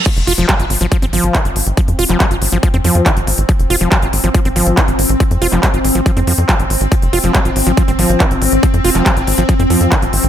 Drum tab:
CC |x---------------|----------------|----------------|----------------|
HH |xxoxxxoxxxoxxxox|xxoxxxoxxxoxxxox|xxoxxxoxxxoxxxox|xxoxxxoxxxoxxxox|
CP |----x-------x---|---xx-------x---|----x-------x---|---xx-------x---|
BD |o---o---o---o---|o---o---o---o---|o---o---o---o---|o---o---o---o---|

CC |----------------|----------------|
HH |xxoxxxoxxxoxxxox|xxoxxxoxxxoxxxox|
CP |----x-------x---|---xx-------x---|
BD |o---o---o---o---|o---o---o---o---|